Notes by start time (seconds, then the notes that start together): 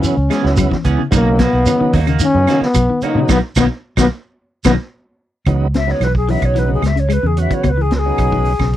Already playing: C#3 F#3 B3 C#4 E4
0.02 E3, closed hi-hat, shekere
0.17 C#2
0.30 E3 G#3 B3 C#4 G#4, snare, closed hi-hat, claves, shekere
0.42 C#2 C#3 F#3 B3 E4, snare
0.57 F#3, kick, closed hi-hat, claves, shekere
0.71 E3, kick, snare
0.84 C#2 E3 B3 C#4 G#4, kick, closed hi-hat, shekere
0.99 C#3
1.11 B1 C#3 D#3 F#3 A#3 B3 D#4 F#4, kick, closed hi-hat, claves, shekere
1.39 A#2 F#3 A#3 B3 F#4, muted clean electric guitar stroke, kick, snare, closed hi-hat, shekere
1.53 B1 A#3 D#4 F#4
1.66 C#3 D#3 F#3 B3 D#4, closed hi-hat, claves, shekere
1.80 D#3, muted fingered electric bass stroke
1.93 D#2 F#3 A#3 D#4 F#4, kick, open hi-hat, shekere
2.07 C#3 A#3 D#4 F#4, closed hi-hat, claves
2.20 D#3 C#4, closed hi-hat, shekere
2.34 F#2 C#3 F#3 B3 D#4
2.47 D#3 F#3 A#3 D#4 F#4, snare, closed hi-hat, claves, shekere
2.61 B3, muted fingered electric bass stroke, snare
2.74 B1 F#3, kick, closed hi-hat, claves, shekere
2.90 D#3
3.02 C#3 F#3 A#3 B3 D#4 F#4, muted fingered electric bass stroke, closed hi-hat, shekere
3.06 D#4
3.15 B2 C#3
3.29 B1 B2 D#3 F#3 A#3 B3 D#4, kick, snare, claves, shekere
3.56 B1 B2 D#3 F#3 A#3 B3 D#4, kick, snare, claves, shekere
3.97 B1 B2 D#3 F#3 A#3 B3 D#4, kick, snare, claves, shekere
4.64 B1 B2 D#3 F#3 A#3 B3 D#4, kick, snare, claves, shekere
5.46 C#2 C#3 E3 F#3 B3 D#4, kick, closed hi-hat, claves
5.74 C#3 E5, snare, closed hi-hat
5.87 C#3 F#3 B3 D#4 C#5, snare
6.00 B1 E3 B4, snare, closed hi-hat, claves
6.15 G#4, kick
6.28 C#3 E3 F#3 B3 D#4 E5, open hi-hat
6.42 B1 C#5, kick, closed hi-hat, claves
6.55 E3 B4, closed hi-hat
6.69 C#3
6.73 G#4
6.82 C#2 G#3, snare, closed hi-hat, claves
6.87 E5
6.96 C#3 C#5, closed hi-hat
7.09 G#3, closed hi-hat, claves
7.13 B4
7.23 E2 C#3 G#4
7.37 C#3 F#3 B3 F#4 E5, closed hi-hat
7.50 E3 C#5, kick, closed hi-hat
7.63 C#2 B2, kick, closed hi-hat, claves
7.69 B4
7.77 E3 G#4
7.91 C#3, snare, closed hi-hat
7.95 G#4 B4
8.06 C#3 F#3 B3 D#4
8.18 B1, kick, closed hi-hat, claves
8.32 D#3, kick
8.45 open hi-hat
8.59 B1 C#3, kick, snare, claves
8.73 closed hi-hat